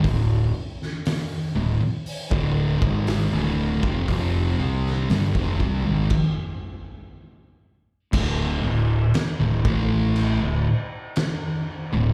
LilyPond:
<<
  \new Staff \with { instrumentName = "Distorted electric guitar" } { \clef bass \time 4/4 \key d \minor \tempo 4 = 59 <d, a,>8 r4 <d, a,>16 r8 <d, a, d>8 <gis, ees gis>8 <d, a, d>8 <f, c>16 | <f, c f>8 <c g c'>8 <g, d>16 <f, c>16 <c g>16 <gis, ees>16 r2 | <d, a, d>8 <d, a,>8 r16 <d, a,>16 <a, e a>8. <d, a,>16 r4 r16 <d, a,>16 | }
  \new Staff \with { instrumentName = "Distorted electric guitar" } { \clef bass \time 4/4 \key d \minor <d, a,>8 r4 <d, a,>16 r8 <d, a, d>8 <gis, ees gis>8 <d, a, d>8 <f, c>16 | <f, c f>8 <c g c'>8 <g, d>16 <f, c>16 <c g>16 <gis, ees>16 r2 | <d, a, d>8 <d, a,>8 r16 <d, a,>16 <a, e a>8. <d, a,>16 r4 r16 <d, a,>16 | }
  \new Staff \with { instrumentName = "Fingered electric bass" } { \clef bass \time 4/4 \key d \minor d,,8 r4 d,,16 r8 d,,8 gis,,8 d,,8 f,,16 | f,,8 c,8 g,,16 f,,16 c,16 gis,,16 r2 | d,,8 d,,8 r16 d,,16 a,,8. d,,16 r4 r16 d,,16 | }
  \new DrumStaff \with { instrumentName = "Drums" } \drummode { \time 4/4 <hho bd>8. sn16 <hho sn>4 hho16 bd8 bd16 <hho sn>8. bd16 | <hho bd>8. sn16 <hho sn>16 bd16 bd8 <cymc bd>4 r4 | <cymc bd>4 <cymc sn>8 bd8 cymc4 <cymc sn>4 | }
>>